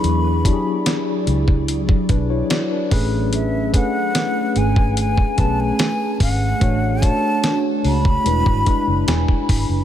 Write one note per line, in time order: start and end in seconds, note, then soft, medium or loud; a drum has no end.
0.00 0.52 E2 loud
0.00 0.36 F#3 medium
0.00 2.88 F#3 medium
0.00 0.36 D4 medium
0.00 0.37 E4 medium
0.00 2.88 E4 medium
0.00 0.40 G#4 medium
0.00 2.88 G#4 medium
0.00 2.88 D5 medium
0.00 1.28 B5 loud
0.04 closed hi-hat medium
0.44 1.92 F#3 medium
0.44 1.92 D4 medium
0.44 1.93 E4 medium
0.44 0.52 G4 medium
0.44 kick medium
0.44 closed hi-hat medium
0.53 1.96 G#4 medium
0.86 snare loud
0.86 closed hi-hat medium
1.27 1.91 C#2 medium
1.27 closed hi-hat medium
1.48 kick loud
1.68 closed hi-hat medium
1.89 kick loud
2.09 2.41 B1 loud
2.09 2.29 D4 medium
2.09 2.29 B4 medium
2.09 kick medium
2.09 closed hi-hat medium
2.30 2.50 E4 medium
2.30 2.50 C#5 medium
2.50 2.70 F#4 medium
2.50 2.70 D5 medium
2.50 snare loud
2.50 closed hi-hat medium
2.71 3.11 D4 medium
2.71 2.92 B4 medium
2.90 3.72 A1 medium
2.90 3.65 A3 loud
2.90 8.22 A3 medium
2.90 3.65 C#4 medium
2.90 6.58 C#4 medium
2.90 6.58 G#4 medium
2.90 3.65 G#4 medium
2.90 6.58 B4 medium
2.90 3.66 B4 loud
2.90 kick loud
2.90 open hi-hat medium
3.33 3.72 E5 medium
3.33 closed hi-hat medium
3.73 5.20 A3 medium
3.73 5.21 C#4 medium
3.73 5.21 G#4 medium
3.73 5.22 B4 medium
3.73 4.59 F#5 loud
3.73 kick loud
3.73 closed hi-hat medium
4.15 snare loud
4.15 closed hi-hat medium
4.56 5.20 G#1 medium
4.56 4.98 G#5 loud
4.56 closed hi-hat medium
4.76 kick loud
4.97 5.41 G#5 loud
4.97 closed hi-hat medium
5.17 kick loud
5.37 5.70 B1 loud
5.37 6.48 A3 medium
5.37 6.48 C#4 medium
5.37 6.49 G#4 medium
5.37 6.49 B4 medium
5.37 5.61 A5 medium
5.37 kick medium
5.37 closed hi-hat medium
5.60 6.21 G#5 loud
5.79 snare loud
5.79 closed hi-hat medium
6.20 6.52 G#1 medium
6.20 7.06 F#5 loud
6.20 kick loud
6.20 open hi-hat medium
6.60 7.09 A1 loud
6.60 6.98 A3 medium
6.60 6.98 D4 medium
6.60 9.84 D4 medium
6.60 8.24 F#4 medium
6.60 6.99 F#4 medium
6.60 8.24 C#5 medium
6.60 6.99 C#5 medium
6.60 kick loud
6.60 closed hi-hat medium
7.01 8.25 A3 medium
7.01 8.24 D4 medium
7.01 8.26 F#4 medium
7.01 8.27 C#5 medium
7.01 7.58 A5 loud
7.01 kick medium
7.01 closed hi-hat medium
7.44 snare loud
7.44 closed hi-hat medium
7.84 8.17 C#2 medium
7.84 9.46 B5 loud
7.84 open hi-hat soft
8.05 kick loud
8.24 8.42 E1 loud
8.24 8.62 G#3 medium
8.24 9.84 G#3 medium
8.24 8.62 D4 medium
8.24 9.84 E4 medium
8.24 8.63 E4 medium
8.24 9.84 B4 medium
8.24 8.63 B4 medium
8.24 closed hi-hat medium
8.46 8.62 G#1 medium
8.46 kick loud
8.66 9.77 G#3 medium
8.66 9.77 D4 medium
8.66 9.78 E4 medium
8.66 9.78 B4 medium
8.66 kick medium
8.66 closed hi-hat medium
8.87 9.03 F#1 medium
9.08 9.24 E1 medium
9.08 9.46 G#5 medium
9.08 snare loud
9.08 closed hi-hat medium
9.28 kick medium
9.49 9.65 G#1 medium
9.49 9.84 B5 medium
9.49 kick loud
9.49 open hi-hat medium
9.69 9.84 F#1 medium